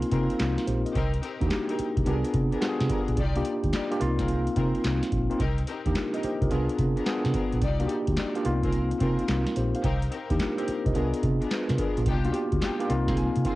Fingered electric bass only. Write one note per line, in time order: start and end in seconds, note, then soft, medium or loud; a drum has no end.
0.12 0.27 C3 loud
0.40 0.55 C2 loud
0.68 0.83 A#1 loud
0.95 1.18 C2 loud
1.42 1.49 D#2 medium
1.79 muted fingered electric bass stroke soft
1.97 2.05 C2 medium
2.07 2.22 C2 loud
2.34 2.50 C3 loud
2.81 2.88 C3 medium
3.09 3.16 A#1 medium
3.18 3.41 C2 medium
3.64 3.72 D2 medium
4.01 4.47 C2 medium
4.57 4.72 C3 medium
4.85 5.00 C2 loud
5.12 5.27 A#1 medium
5.40 5.63 C2 medium
5.86 5.94 D#2 medium
6.24 muted fingered electric bass stroke soft
6.42 6.49 C2 medium
6.52 6.67 C2 loud
6.79 6.94 C3 loud
7.25 7.33 C3 loud
7.53 7.61 A#1 medium
7.62 7.85 C2 loud
8.08 8.16 D2 medium
8.46 8.92 C2 medium
9.01 9.16 C3 medium
9.29 9.44 C2 loud
9.57 9.72 A#1 medium
9.84 10.07 C2 loud
10.30 10.38 D#2 medium
10.68 muted fingered electric bass stroke soft
10.86 10.94 C2 medium
10.96 11.11 C2 loud
11.23 11.38 C3 medium
11.70 11.77 C3 loud
11.98 12.05 A#1 medium
12.06 12.29 C2 loud
12.53 12.60 D2 medium
12.90 13.28 C2 medium
13.37 13.44 C3 medium